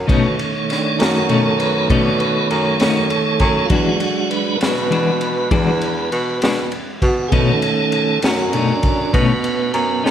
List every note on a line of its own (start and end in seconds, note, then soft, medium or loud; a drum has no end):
0.07 0.26 B2 medium
0.07 0.37 B2 medium
0.07 3.66 D#3 medium
0.07 3.66 A3 soft
0.07 0.27 A3 medium
0.07 0.27 C#4 medium
0.07 0.27 D#4 medium
0.07 3.67 C#5 medium
0.07 kick loud
0.07 ride medium
0.39 ride medium
0.70 0.99 D4 medium
0.70 snare soft
0.70 ride medium
0.99 1.86 F#2 medium
0.99 1.18 A3 soft
0.99 1.18 C#4 soft
0.99 1.17 D#4 medium
0.99 1.29 F#4 medium
0.99 snare loud
0.99 ride medium
1.29 1.48 B2 medium
1.29 1.48 A3 medium
1.29 1.48 C#4 medium
1.29 1.48 D#4 medium
1.29 1.58 A4 medium
1.29 ride medium
1.59 1.89 B4 medium
1.59 ride medium
1.90 2.08 B2 medium
1.90 2.46 B2 loud
1.90 2.08 A3 medium
1.90 2.09 C#4 medium
1.90 2.09 D#4 medium
1.90 2.19 D5 medium
1.90 kick loud
1.90 ride medium
2.19 2.49 B4 loud
2.19 ride medium
2.50 2.78 F#2 loud
2.50 ride medium
2.80 3.08 F#2 medium
2.80 2.99 A3 medium
2.80 2.99 C#4 medium
2.80 2.98 D#4 medium
2.80 snare loud
2.80 ride medium
3.10 3.69 A4 medium
3.10 ride medium
3.40 3.68 F#2 loud
3.40 kick medium
3.40 ride medium
3.65 4.57 F#3 medium
3.65 3.69 F4 medium
3.70 3.98 E2 medium
3.70 3.89 E3 medium
3.70 4.57 G#3 medium
3.70 3.89 G#3 medium
3.70 4.58 D4 medium
3.70 3.89 D4 medium
3.70 3.99 F#4 loud
3.70 3.90 F#4 medium
3.70 kick loud
3.70 ride medium
4.00 4.30 F#4 medium
4.00 ride medium
4.30 4.59 B4 medium
4.30 ride medium
4.55 4.60 A#4 medium
4.61 5.48 B2 medium
4.61 4.80 G#3 soft
4.61 4.80 D4 soft
4.61 4.79 F#4 medium
4.61 6.38 B4 loud
4.61 snare loud
4.61 ride medium
4.90 5.09 E3 medium
4.90 5.10 G#3 medium
4.90 5.10 D4 medium
4.90 5.10 F#4 medium
4.90 ride medium
5.21 ride medium
5.51 6.08 E2 loud
5.51 5.70 E3 medium
5.51 5.70 G#3 loud
5.51 5.70 D4 loud
5.51 5.70 F#4 loud
5.51 kick loud
5.51 ride medium
5.81 ride medium
6.12 6.40 B2 loud
6.12 ride medium
6.41 6.70 B2 medium
6.41 6.61 G#3 medium
6.41 6.61 D4 medium
6.41 6.60 F#4 medium
6.41 snare loud
6.41 ride medium
6.72 ride medium
7.02 7.30 B2 loud
7.02 7.32 F#4 loud
7.02 kick medium
7.02 ride medium
7.28 7.50 B2 medium
7.28 7.61 B2 medium
7.28 8.19 D#3 medium
7.28 7.51 A3 medium
7.28 7.51 C#4 medium
7.28 7.32 G#4 medium
7.28 kick loud
7.28 ride medium
7.32 8.19 A3 medium
7.32 8.20 C#4 medium
7.32 7.51 D#4 medium
7.32 8.21 A4 medium
7.62 ride medium
7.92 ride medium
8.22 9.10 F#2 medium
8.22 8.43 A3 soft
8.22 8.42 C#4 medium
8.22 8.41 D#4 medium
8.22 8.53 F#4 medium
8.22 snare loud
8.22 ride medium
8.53 8.72 B2 medium
8.53 8.73 A3 medium
8.53 8.73 C#4 medium
8.53 8.83 D4 medium
8.53 8.73 D#4 medium
8.53 ride medium
8.83 9.14 D4 medium
8.83 kick medium
8.83 ride medium
9.13 9.70 B2 medium
9.13 9.32 B2 medium
9.13 9.32 A3 medium
9.13 10.11 B3 loud
9.13 9.32 C#4 medium
9.13 9.33 D#4 medium
9.13 kick loud
9.13 ride medium
9.44 ride medium
9.74 10.02 F#2 loud
9.74 ride medium
10.04 10.11 F#2 medium
10.04 10.11 A3 soft
10.04 10.11 C#4 medium
10.04 10.11 D#4 medium
10.04 snare medium